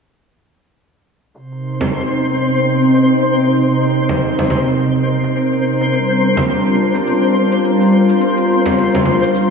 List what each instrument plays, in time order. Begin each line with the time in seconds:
1.35 analog synth pad C3, synth texture C4 C5, shaker
1.47 analog synth pad D#4 A#4
1.52 shaker
1.56 analog synth pad C4
1.80 frame drum, shaker
1.92 shaker
2.09 shaker
2.38 shaker
2.50 shaker
2.66 shaker
2.95 shaker
3.07 shaker
3.24 shaker
3.52 shaker
3.64 shaker
3.81 shaker
4.09 frame drum, shaker
4.21 shaker
4.38 frame drum, shaker
4.50 frame drum
4.67 shaker
4.79 shaker
4.95 shaker
5.24 shaker
5.36 shaker
5.52 shaker
5.81 shaker
5.92 analog synth pad G3, shaker
5.99 analog synth pad D4
6.09 shaker
6.25 analog synth pad F4
6.37 frame drum, shaker
6.50 shaker
6.66 shaker
6.95 shaker
7.07 shaker
7.23 shaker
7.52 shaker
7.64 shaker
7.81 shaker
8.09 shaker
8.21 shaker
8.37 shaker
8.66 frame drum, shaker
8.78 shaker
8.94 frame drum, shaker
9.05 frame drum
9.23 shaker
9.35 shaker